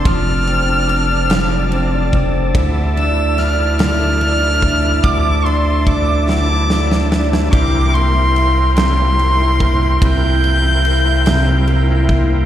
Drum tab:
RD |x-x-x-x-x-x-|x-x-x-x-x-x-|x-x-x-------|x-x-x-x-x-x-|
SD |------o-----|----o-o-----|------o-oooo|------o-----|
BD |o---------o-|o---------o-|o---o-------|o---------o-|

RD |x-x-x-x-x-x-|
SD |------o-----|
BD |o---------o-|